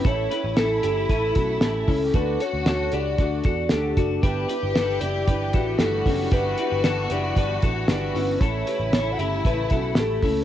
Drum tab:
HH |xxxxxxxo|xxxxxxxx|xxxxxxxo|xxxxxxxo|
SD |--o---o-|--o---o-|--o---o-|--o---o-|
BD |o---oo-o|o---oo-o|o---oo-o|o---oo--|

HH |xxxxxxxo|
SD |--o---o-|
BD |o---oo-o|